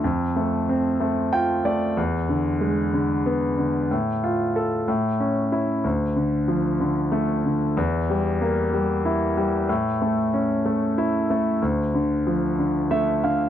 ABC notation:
X:1
M:6/8
L:1/8
Q:3/8=62
K:Dm
V:1 name="Grand piano" clef=bass
F,, A, C A, [Fg] [A,d] | E,, D, ^G, D, =B, D, | A,, F A A,, ^C E | D,, D, F, D, A, D, |
E,, G, B, G, E G, | A,, A, ^C A, E A, | D,, D, F, D, [A,e] [D,f] |]